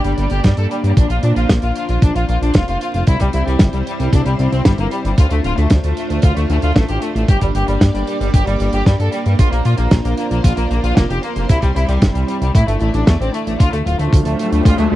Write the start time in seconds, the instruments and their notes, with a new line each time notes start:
Already playing: string machine A#3 D4 G4 D5
0.04 analog synth bass G1, violin section G3, closed hi-hat
0.18 analog synth bass G1, violin section G3, closed hi-hat
0.30 analog synth bass G1, violin section G4, closed hi-hat
0.44 analog synth bass G2, violin section G3, kick, snare, closed hi-hat
0.57 analog synth bass G2, violin section A4, closed hi-hat
0.71 violin section G3, closed hi-hat
0.84 analog synth bass G2, violin section G3, closed hi-hat
0.97 analog synth bass A#1, violin section D4, string machine F4 C5, kick, closed hi-hat
1.10 analog synth bass A#1, violin section F4, closed hi-hat
1.23 analog synth bass A#2, violin section D4, closed hi-hat
1.36 analog synth bass A#1, violin section F4, closed hi-hat
1.49 analog synth bass A#1, kick, snare, closed hi-hat
1.62 analog synth bass A#1, violin section F4, closed hi-hat
1.76 violin section F4, closed hi-hat
1.89 analog synth bass A#1, violin section F4, closed hi-hat
2.02 analog synth bass A#1, violin section D4, kick, closed hi-hat
2.15 analog synth bass A#1, violin section F4, closed hi-hat
2.29 analog synth bass A#1, violin section F4, closed hi-hat
2.42 analog synth bass A#1, violin section D4, closed hi-hat
2.54 analog synth bass F1, violin section F4, kick, snare, closed hi-hat
2.68 analog synth bass F1, violin section F4, closed hi-hat
2.81 violin section F4, closed hi-hat
2.94 analog synth bass F1, violin section F4, closed hi-hat
3.07 analog synth bass C2, string machine G3 C4 E4, violin section E4, kick, closed hi-hat
3.20 analog synth bass C2, violin section G3, kick, closed hi-hat
3.33 analog synth bass C2, violin section E4, closed hi-hat
3.47 analog synth bass C2, violin section G3, closed hi-hat
3.59 analog synth bass G1, kick, snare, closed hi-hat
3.73 analog synth bass C2, violin section G3, closed hi-hat
3.87 violin section G3, closed hi-hat
4.00 analog synth bass C2, violin section G3, closed hi-hat
4.13 analog synth bass C2, violin section D4, kick, closed hi-hat
4.26 analog synth bass C2, violin section G3, closed hi-hat
4.39 analog synth bass C2, violin section G3, closed hi-hat
4.52 analog synth bass C2, violin section C4, closed hi-hat
4.65 analog synth bass G1, violin section G3, kick, snare, closed hi-hat
4.78 analog synth bass G1, violin section A#3, closed hi-hat
4.91 violin section G3, closed hi-hat
5.05 analog synth bass G1, violin section G3, closed hi-hat
5.18 analog synth bass D2, string machine A3 D4 F4, violin section F4, kick, closed hi-hat
5.31 analog synth bass D2, violin section A3, closed hi-hat
5.44 analog synth bass D1, violin section F4, closed hi-hat
5.58 analog synth bass D2, violin section A3, closed hi-hat
5.70 analog synth bass D2, kick, snare, closed hi-hat
5.84 analog synth bass D2, violin section A3, closed hi-hat
5.97 violin section A3, closed hi-hat
6.10 analog synth bass D2, violin section A3, closed hi-hat
6.22 analog synth bass D2, violin section F4, kick, closed hi-hat
6.36 analog synth bass D2, violin section A3, closed hi-hat
6.49 analog synth bass D2, violin section A3, closed hi-hat
6.62 analog synth bass D2, violin section F4, closed hi-hat
6.76 analog synth bass A1, violin section A3, kick, snare, closed hi-hat
6.89 analog synth bass A1, violin section G4, closed hi-hat
7.02 violin section A3, closed hi-hat
7.15 analog synth bass A1, violin section A3, closed hi-hat
7.28 analog synth bass G1, string machine A#3 G4 D5, violin section G4, kick, closed hi-hat
7.41 analog synth bass G1, violin section G3, kick, closed hi-hat
7.55 analog synth bass G1, violin section G4, closed hi-hat
7.68 analog synth bass G1, violin section G3, closed hi-hat
7.81 analog synth bass G2, kick, snare, closed hi-hat
7.94 analog synth bass G1, violin section G3, closed hi-hat
8.07 violin section G3, closed hi-hat
8.21 analog synth bass G1, violin section G3, closed hi-hat
8.34 analog synth bass G1, violin section G4, kick, closed hi-hat
8.47 analog synth bass G1, violin section G3, closed hi-hat
8.60 analog synth bass G1, violin section G3, closed hi-hat
8.73 analog synth bass G1, violin section G4, closed hi-hat
8.86 analog synth bass G2, violin section G3, kick, snare, closed hi-hat
9.00 analog synth bass G2, violin section A4, closed hi-hat
9.12 violin section G3, closed hi-hat
9.26 analog synth bass G2, violin section G3, closed hi-hat
9.39 analog synth bass A#1, string machine D4 F4 C5, violin section F4, kick, closed hi-hat
9.52 analog synth bass A#1, violin section A#3, closed hi-hat
9.65 analog synth bass A#2, violin section F4, closed hi-hat
9.78 analog synth bass A#1, violin section A#3, closed hi-hat
9.91 analog synth bass A#1, kick, snare, closed hi-hat
10.04 analog synth bass A#1, violin section A#3, closed hi-hat
10.18 violin section A#3, closed hi-hat
10.31 analog synth bass A#1, violin section A#3, closed hi-hat
10.44 analog synth bass A#1, violin section F4, kick, closed hi-hat
10.57 analog synth bass A#1, violin section A#3, closed hi-hat
10.70 analog synth bass A#1, violin section A#3, closed hi-hat
10.84 analog synth bass A#1, violin section F4, closed hi-hat
10.97 analog synth bass F1, violin section A#3, kick, snare, closed hi-hat
11.10 analog synth bass F1, violin section G4, closed hi-hat
11.23 violin section A#3, closed hi-hat
11.36 analog synth bass F1, violin section A#3, closed hi-hat
11.49 analog synth bass C2, string machine G3 C4 E4, violin section E4, kick, closed hi-hat
11.62 analog synth bass C2, violin section G3, kick, closed hi-hat
11.76 analog synth bass C2, violin section E4, closed hi-hat
11.89 analog synth bass C2, violin section G3, closed hi-hat
12.02 analog synth bass G1, kick, snare, closed hi-hat
12.15 analog synth bass C2, violin section G3, closed hi-hat
12.28 violin section G3, closed hi-hat
12.41 analog synth bass C2, violin section G3, closed hi-hat
12.55 analog synth bass A2, string machine A3 D4 E4 D5, violin section E4, kick, closed hi-hat
12.68 analog synth bass G1, violin section A3, closed hi-hat
12.80 analog synth bass A1, violin section A3, closed hi-hat
12.94 analog synth bass A1, violin section D4, closed hi-hat
13.07 analog synth bass E2, violin section A3, kick, snare, closed hi-hat
13.20 analog synth bass A1, violin section C4, closed hi-hat
13.34 violin section A3, closed hi-hat
13.47 analog synth bass A1, violin section A3, closed hi-hat
13.60 analog synth bass D2, string machine A3 D4 F4 C5, violin section F4, kick, closed hi-hat, mid tom, riser
13.73 analog synth bass D2, violin section A3, closed hi-hat
13.86 analog synth bass D1, violin section F4, closed hi-hat
13.99 analog synth bass D2, violin section A3, closed hi-hat
14.12 analog synth bass D2, kick, closed hi-hat, mid tom
14.25 analog synth bass D2, violin section A3, closed hi-hat
14.39 violin section A3, closed hi-hat
14.52 analog synth bass D2, violin section A3, closed hi-hat
14.65 analog synth bass D2, violin section F4, kick, closed hi-hat, mid tom
14.78 analog synth bass D2, violin section A3, closed hi-hat
14.92 analog synth bass D2, violin section A3